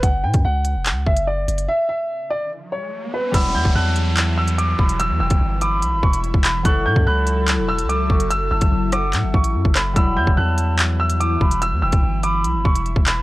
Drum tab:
CC |----------------|----------------|x---------------|----------------|
HH |x--x--x-x--x--xx|----------------|x-----x-x--xx--x|x--x--x-x--xx-x-|
CP |--------x-------|----------------|--------x-------|--------------x-|
SD |----------------|----------------|----------------|----------------|
BD |o--o------o-----|----------------|o--o----------o-|---o------o--o--|

CC |----------------|----------------|----------------|----------------|
HH |x-----x-x--xx--x|x--x--x-x--x--x-|x-----x-x--xx--x|x--x--x-x--xx-x-|
CP |--------x-------|--------x-----x-|--------x-------|--------------x-|
SD |----------------|------r-------r-|----------------|----------------|
BD |o--o----------o-|---o------o--o--|o--o----------o-|---o------o--o--|